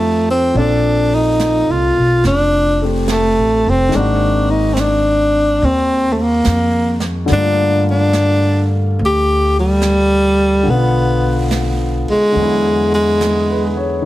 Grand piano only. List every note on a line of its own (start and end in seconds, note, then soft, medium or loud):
0.00 0.52 F3 soft
0.00 0.55 A3 soft
0.00 0.55 C4 soft
0.00 0.56 D#4 soft
0.00 0.57 G4 medium
0.54 3.93 A#2 soft
0.54 3.92 F3 soft
0.54 2.82 C4 soft
0.54 3.94 D5 soft
0.58 3.95 A4 soft
2.82 3.93 A3 soft
2.82 3.93 C4 soft
2.82 3.94 G4 soft
3.89 7.28 D#3 medium
3.89 7.29 G#3 soft
3.94 7.30 A#3 soft
3.94 7.32 C4 soft
3.99 7.33 F#4 medium
7.26 10.62 D3 soft
7.26 10.67 G3 soft
7.32 10.68 A3 soft
7.32 10.70 A#3 soft
7.38 10.71 F4 soft
10.63 12.30 D3 soft
10.63 12.36 F3 soft
10.71 12.38 B3 soft
10.71 12.40 F4 soft
12.32 14.04 D3 soft
12.32 14.05 F#3 soft
12.38 14.05 G#3 soft
12.38 14.05 B3 soft
12.43 14.05 E4 soft
13.22 13.76 G#4 soft
13.51 13.94 B4 soft
13.77 14.05 C#5 soft
14.02 14.05 D#3 soft